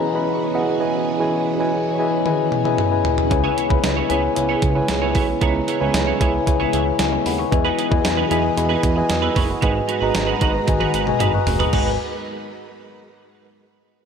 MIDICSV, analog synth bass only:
0, 0, Header, 1, 2, 480
1, 0, Start_track
1, 0, Key_signature, 5, "minor"
1, 0, Tempo, 526316
1, 1101, Time_signature, 4, 2, 24, 8
1, 12815, End_track
2, 0, Start_track
2, 0, Title_t, "Analog synth bass"
2, 0, Program_c, 0, 38
2, 3020, Note_on_c, 0, 37, 116
2, 3193, Note_off_c, 0, 37, 0
2, 3377, Note_on_c, 0, 37, 101
2, 3465, Note_off_c, 0, 37, 0
2, 3499, Note_on_c, 0, 37, 105
2, 3672, Note_off_c, 0, 37, 0
2, 3741, Note_on_c, 0, 37, 106
2, 3914, Note_off_c, 0, 37, 0
2, 3984, Note_on_c, 0, 37, 104
2, 4156, Note_off_c, 0, 37, 0
2, 4218, Note_on_c, 0, 37, 99
2, 4392, Note_off_c, 0, 37, 0
2, 4462, Note_on_c, 0, 37, 110
2, 4699, Note_on_c, 0, 35, 88
2, 4713, Note_off_c, 0, 37, 0
2, 4872, Note_off_c, 0, 35, 0
2, 4940, Note_on_c, 0, 37, 119
2, 5113, Note_off_c, 0, 37, 0
2, 5300, Note_on_c, 0, 37, 96
2, 5387, Note_off_c, 0, 37, 0
2, 5418, Note_on_c, 0, 37, 100
2, 5591, Note_off_c, 0, 37, 0
2, 5662, Note_on_c, 0, 37, 99
2, 5834, Note_off_c, 0, 37, 0
2, 5903, Note_on_c, 0, 37, 111
2, 6075, Note_off_c, 0, 37, 0
2, 6141, Note_on_c, 0, 37, 100
2, 6314, Note_off_c, 0, 37, 0
2, 6380, Note_on_c, 0, 37, 100
2, 6553, Note_off_c, 0, 37, 0
2, 6621, Note_on_c, 0, 39, 83
2, 6793, Note_off_c, 0, 39, 0
2, 6861, Note_on_c, 0, 40, 110
2, 7034, Note_off_c, 0, 40, 0
2, 7219, Note_on_c, 0, 40, 107
2, 7306, Note_off_c, 0, 40, 0
2, 7342, Note_on_c, 0, 40, 100
2, 7514, Note_off_c, 0, 40, 0
2, 7579, Note_on_c, 0, 40, 94
2, 7752, Note_off_c, 0, 40, 0
2, 7821, Note_on_c, 0, 40, 104
2, 7993, Note_off_c, 0, 40, 0
2, 8057, Note_on_c, 0, 40, 105
2, 8231, Note_off_c, 0, 40, 0
2, 8300, Note_on_c, 0, 40, 108
2, 8473, Note_off_c, 0, 40, 0
2, 8540, Note_on_c, 0, 30, 80
2, 8713, Note_off_c, 0, 30, 0
2, 8777, Note_on_c, 0, 32, 118
2, 8951, Note_off_c, 0, 32, 0
2, 9135, Note_on_c, 0, 32, 101
2, 9223, Note_off_c, 0, 32, 0
2, 9257, Note_on_c, 0, 32, 99
2, 9431, Note_off_c, 0, 32, 0
2, 9499, Note_on_c, 0, 32, 107
2, 9672, Note_off_c, 0, 32, 0
2, 9739, Note_on_c, 0, 32, 110
2, 9912, Note_off_c, 0, 32, 0
2, 9978, Note_on_c, 0, 32, 95
2, 10152, Note_off_c, 0, 32, 0
2, 10216, Note_on_c, 0, 32, 106
2, 10391, Note_off_c, 0, 32, 0
2, 10454, Note_on_c, 0, 30, 89
2, 10629, Note_off_c, 0, 30, 0
2, 10701, Note_on_c, 0, 32, 106
2, 10924, Note_off_c, 0, 32, 0
2, 12815, End_track
0, 0, End_of_file